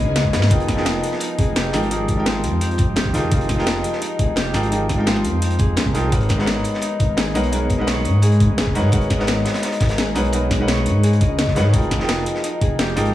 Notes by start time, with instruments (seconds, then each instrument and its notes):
Already playing: felt piano G#3 D#4 A#4 B4 C#5 F#5, ambient pad B3 C#4 G#4, harp D#4 G#4 A#4 C#5
0.00 detuned saw bass C#2, harp D#5
0.16 harp F#4, snare, closed hi-hat
0.25 kick
0.33 detuned saw bass G#2, harp B4, snare, closed hi-hat, open hi-hat
0.42 snare
0.50 detuned saw bass F1, felt piano F3 D#4 G#4 A#4 G5, kick, closed hi-hat
0.60 closed hi-hat
0.68 kick, snare, closed hi-hat
0.75 felt piano F3 D#4 G#4 A#4, snare
0.79 felt piano G5
0.86 harp D#4, snare, closed hi-hat
1.04 closed hi-hat
1.12 snare
1.20 harp D#4, closed hi-hat
1.39 detuned saw bass F1, harp G#4, kick, closed hi-hat
1.56 detuned saw bass F1, harp G4, snare, closed hi-hat
1.73 detuned saw bass G#1, felt piano F3 D#4 G#4 A#4 G5, snare, closed hi-hat, open hi-hat
1.83 closed hi-hat
1.90 felt piano F3 D#4 G#4 A#4 G5, closed hi-hat
2.08 kick, closed hi-hat
2.16 felt piano F3 G#3 D#4 A#4
2.20 felt piano G5
2.26 harp C5, snare, closed hi-hat
2.44 detuned saw bass F2, closed hi-hat
2.61 harp G4, closed hi-hat
2.71 closed hi-hat
2.78 kick, closed hi-hat
2.88 detuned saw bass D#1
2.96 harp G4, snare, closed hi-hat
3.05 kick
3.13 detuned saw bass F2, felt piano F3 D#4 G#4 A#4 G5, harp F4, snare, closed hi-hat, open hi-hat
3.31 detuned saw bass F1, felt piano F3 D#4 G#4 A#4 G5, kick, closed hi-hat
3.41 closed hi-hat
3.49 kick, snare, closed hi-hat
3.56 felt piano F3 D#4 G#4 A#4 G5, snare
3.67 harp D#4, snare, closed hi-hat
3.84 closed hi-hat
3.93 snare
4.02 harp D#4, closed hi-hat
4.19 detuned saw bass F1, harp G#4, kick, closed hi-hat
4.36 detuned saw bass F1, harp G4, snare, closed hi-hat
4.53 detuned saw bass G#1, felt piano F3 D#4 G#4 A#4 G5, snare, closed hi-hat, open hi-hat
4.63 closed hi-hat
4.71 felt piano F3 D#4 G#4 A#4 G5, closed hi-hat
4.89 kick, snare, closed hi-hat
4.96 felt piano F3 G#3 D#4 A#4 G5
5.07 harp C5, snare, closed hi-hat
5.16 snare
5.24 detuned saw bass F2, closed hi-hat
5.42 harp G4, closed hi-hat
5.50 closed hi-hat
5.59 detuned saw bass F2, harp G#4, kick, closed hi-hat
5.77 detuned saw bass C2, harp A#4, snare, closed hi-hat
5.86 kick
5.94 felt piano F3 D#4 G#4 A#4 G5, harp G4, snare, closed hi-hat, open hi-hat
6.11 detuned saw bass G#1, felt piano G#3 D#4 A#4 B4 C#5 F#5, kick, closed hi-hat
6.21 closed hi-hat
6.29 kick, snare, closed hi-hat
6.37 felt piano G#3 B3 D#4 A#4 C#5, snare
6.41 felt piano F#5
6.46 harp D#4, snare, closed hi-hat
6.64 closed hi-hat
6.74 snare
6.82 harp D#4, closed hi-hat
7.00 detuned saw bass G#1, harp A#4, kick, closed hi-hat
7.17 detuned saw bass G#1, harp G#4, snare, closed hi-hat
7.34 detuned saw bass B1, felt piano G#3 D#4 A#4 B4 C#5 F#5, snare, closed hi-hat, open hi-hat
7.43 closed hi-hat
7.52 felt piano G#3 D#4 A#4 B4 C#5 F#5, closed hi-hat
7.70 kick, closed hi-hat
7.77 felt piano G#3 D#4 A#4 B4 C#5
7.81 felt piano F#5
7.87 harp C#5, snare, closed hi-hat
8.05 detuned saw bass G#2, closed hi-hat
8.22 harp G#4, closed hi-hat
8.32 closed hi-hat
8.40 kick, closed hi-hat
8.49 detuned saw bass F#1
8.58 harp G#4, snare, closed hi-hat
8.67 kick
8.74 detuned saw bass G#2, felt piano G#3 D#4 A#4 B4 C#5 F#5, harp F#4, snare, closed hi-hat, open hi-hat
8.92 detuned saw bass G#1, felt piano G#3 D#4 A#4 B4 C#5 F#5, kick, closed hi-hat
9.01 closed hi-hat
9.10 kick, snare, closed hi-hat
9.17 felt piano G#3 B3 D#4 A#4 C#5 F#5, snare
9.27 harp D#4, snare, closed hi-hat
9.45 snare, closed hi-hat
9.54 snare, closed hi-hat
9.62 harp D#4, snare, closed hi-hat
9.72 closed hi-hat
9.80 detuned saw bass G#1, harp A#4, kick, snare, closed hi-hat
9.89 snare, closed hi-hat
9.98 detuned saw bass G#1, harp G#4, snare, closed hi-hat
10.15 detuned saw bass B1, felt piano G#3 D#4 A#4 B4 C#5 F#5, snare, closed hi-hat, open hi-hat
10.24 closed hi-hat
10.32 felt piano G#3 D#4 A#4 B4 C#5 F#5, closed hi-hat
10.51 kick, snare, closed hi-hat
10.58 felt piano G#3 D#4 A#4 B4 C#5 F#5
10.68 harp C#5, snare, closed hi-hat
10.77 snare
10.86 detuned saw bass G#2, closed hi-hat
11.03 harp G#4, closed hi-hat
11.13 closed hi-hat
11.21 detuned saw bass C#2, harp D#5, kick, closed hi-hat
11.38 harp F#4, snare, closed hi-hat
11.47 kick, snare
11.55 detuned saw bass G#2, felt piano G#3 D#4 A#4 B4 C#5 F#5, harp B4, snare, closed hi-hat, open hi-hat
11.73 detuned saw bass F1, felt piano F3 D#4 G#4 A#4 G5, kick, closed hi-hat
11.82 closed hi-hat
11.91 kick, snare, closed hi-hat
11.98 felt piano F3 D#4 G#4 A#4, snare
12.02 felt piano G5
12.09 harp D#4, snare, closed hi-hat
12.26 closed hi-hat
12.35 snare
12.44 harp D#4, closed hi-hat
12.61 detuned saw bass F1, harp G#4, kick, closed hi-hat
12.79 detuned saw bass F1, harp G4, snare, closed hi-hat
12.96 detuned saw bass G#1, felt piano F3 D#4 G#4 A#4 G5, snare, closed hi-hat, open hi-hat
13.05 closed hi-hat